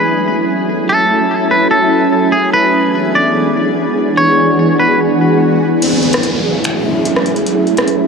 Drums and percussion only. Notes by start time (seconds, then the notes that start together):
5.82 closed hi-hat, crash
6.03 closed hi-hat
6.13 cross-stick, closed hi-hat
6.23 closed hi-hat
6.64 finger snap, closed hi-hat
7.05 closed hi-hat
7.16 cross-stick
7.26 closed hi-hat
7.36 closed hi-hat
7.46 closed hi-hat
7.67 closed hi-hat
7.77 cross-stick, closed hi-hat
7.88 closed hi-hat